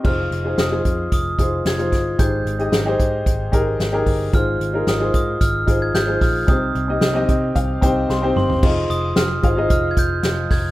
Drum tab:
CC |x---------------|----------------|----------------|----------------|
HH |--x-x-x-x-x-xxx-|x-xxx-x-x-x-x-o-|x-x-x-x-x-x-x-o-|x-x-x-x-x-x-----|
SD |----o-------o-o-|----o-------o---|----o-------o-o-|----o-------o---|
T2 |----------------|----------------|----------------|--------------o-|
FT |----------------|----------------|----------------|---------------o|
BD |o-----o-o-o---o-|o-----o-o-o---o-|o-----o-o-o---o-|o-----o-o-o-----|

CC |x---------------|
HH |--x-x-x-x-x-x-o-|
SD |----o-------o-o-|
T2 |----------------|
FT |----------------|
BD |o-----o-o-o---o-|